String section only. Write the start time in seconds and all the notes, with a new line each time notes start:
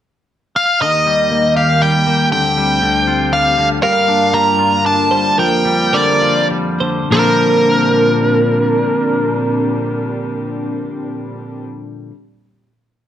0.82 D#2 D#3 A#3 G4
2.33 D2 D3 C4
3.83 G2 A#3 F4
5.38 F2 G3
7.11 A#2 G3 C4 D4